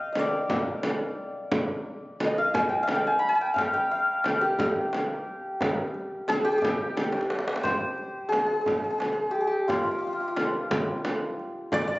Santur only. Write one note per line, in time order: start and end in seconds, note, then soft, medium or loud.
0.00 0.23 G4 medium
0.00 0.12 D#5 medium
0.00 1.89 F5 medium
0.00 1.38 G5 medium
0.12 0.25 D#5 medium
0.19 2.31 D5 medium
2.25 4.62 D#5 medium
2.38 2.83 F5 medium
2.54 2.75 G#5 medium
2.69 2.95 G5 medium
2.83 3.54 F5 medium
2.95 3.13 G5 medium
3.07 3.28 G#5 medium
3.19 3.30 B5 medium
3.29 3.35 G#5 medium
3.29 5.11 B5 medium
3.35 3.47 G#5 medium
3.41 3.73 G5 medium
3.54 3.91 F5 loud
3.74 4.25 G5 medium
3.91 6.14 F5 medium
4.26 6.34 G5 medium
4.41 6.34 G4 medium
6.28 6.51 G#4 loud
6.45 6.57 G4 medium
6.52 6.64 G#4 medium
6.58 8.35 G4 medium
7.63 10.27 C5 loud
8.29 8.37 G#4 medium
8.38 8.46 G#4 medium
8.46 8.53 G#4 medium
8.54 8.61 G#4 soft
8.61 8.68 G#4 medium
8.68 8.77 G#4 soft
8.78 8.84 G#4 medium
8.84 8.90 G#4 medium
8.90 8.98 G#4 medium
8.98 9.05 G#4 medium
9.05 9.12 G#4 medium
9.13 9.37 G#4 medium
9.31 9.47 G4 medium
9.41 9.53 G#4 medium
9.47 11.99 G4 medium
9.68 9.75 F4 medium
9.75 9.83 F4 medium
9.83 9.91 F4 medium
9.91 9.98 F4 soft
9.98 10.06 F4 soft
10.07 10.12 F4 soft
10.13 10.20 F4 soft
10.20 10.27 F4 soft
10.28 11.99 F4 medium
11.74 11.81 D5 loud
11.81 11.87 D5 medium
11.88 11.95 D5 medium
11.95 11.99 D5 medium